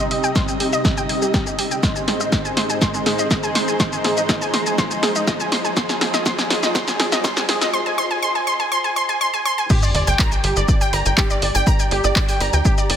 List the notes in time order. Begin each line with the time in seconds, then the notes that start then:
Already playing: C3 G3 C4 D#4 G4 D#5, riser
0.11 D#5, open hi-hat
0.24 G5, shaker
0.36 C6, kick, snare, shaker
0.48 G5, shaker
0.60 G4, open hi-hat
0.73 D#5, shaker
0.85 D#5, kick, snare, shaker
0.97 G5, shaker
1.09 G5, open hi-hat
1.22 G4, shaker
1.34 G4, kick, snare, shaker
1.47 G4, shaker
1.59 G4, open hi-hat
1.71 G5, shaker
1.83 G#2 G#3 D#4 G#4 C5 C6, kick, snare, shaker
1.96 G#5, shaker
2.08 G#4, snare, open hi-hat
2.20 D#5, shaker
2.32 D#5, kick, snare, shaker
2.45 G#5, shaker
2.57 C6, snare, open hi-hat
2.66 G#5 A#5, shaker
2.77 C6
2.81 C6, kick, snare, shaker
2.94 G#5, shaker
3.06 G#4, snare, open hi-hat
3.19 D#5, shaker
3.31 D#5, kick, snare, shaker
3.43 G#5, shaker
3.55 C6, snare, open hi-hat
3.68 G#5, shaker
3.80 C6, kick, snare, shaker
3.93 G#5, shaker
4.04 G#4, snare, open hi-hat
4.17 D#5, shaker
4.29 D#5, kick, snare, shaker
4.42 G#5, shaker
4.54 C6, snare, open hi-hat
4.66 G#5, shaker
4.78 C6, kick, snare, shaker
4.91 G#5, shaker
5.03 G#4, snare, open hi-hat
5.15 D#5, shaker
5.27 D#5, kick, snare, shaker
5.40 G#5, shaker
5.52 C6, snare, open hi-hat
5.65 G#5, shaker
5.77 F2 F3 F4 G#4 C6, kick, snare, shaker
5.89 G#5, snare, shaker
6.01 G#4, snare, open hi-hat
6.10 D#5 G#5, snare, shaker
6.26 C6, kick, snare, shaker
6.37 C5 G#5, snare, shaker
6.50 G#4, snare, open hi-hat
6.63 D#5, snare, shaker
6.75 C6, kick, snare, shaker
6.88 G#5, snare, shaker
7.00 G#4, snare, open hi-hat
7.12 D#5, snare, shaker
7.24 C6, kick, snare, shaker
7.37 G#5, snare, shaker
7.49 G#4, snare, open hi-hat
7.61 D#5, snare, shaker
7.73 C6
7.86 G#5
7.98 C6
8.11 G#5
8.22 C6
8.35 G#5
8.47 C6
8.60 G#5
8.72 C6
8.84 G#5
8.96 C6
9.09 G#5
9.21 C6
9.34 G#5
9.45 C6
9.58 G#5
9.70 G4, kick, crash, sub drop, shaker
9.83 D5, shaker
9.95 G1 D5 G5, open hi-hat
10.07 G1 D5 G5, shaker
10.19 A#5, kick, clap, shaker
10.32 G5, shaker
10.44 G1 G4, open hi-hat
10.56 G1 D5, shaker
10.68 D5, kick, shaker
10.81 G5, shaker
10.93 G1 A#5, open hi-hat
11.06 G1 G5, shaker
11.18 G4, kick, clap, shaker
11.30 D5, shaker
11.37 A#5
11.42 G1 D5, open hi-hat
11.55 G1 G5, shaker
11.67 A#5, kick, shaker
11.79 G5, shaker
11.91 G1 G4, open hi-hat
12.04 G1 D5, shaker
12.16 D5, kick, clap, shaker
12.29 G5, open hi-hat, shaker
12.40 G1 A#5, open hi-hat
12.53 D2 G5, shaker
12.65 G4, kick, shaker
12.78 D5, shaker
12.90 G1 D5, open hi-hat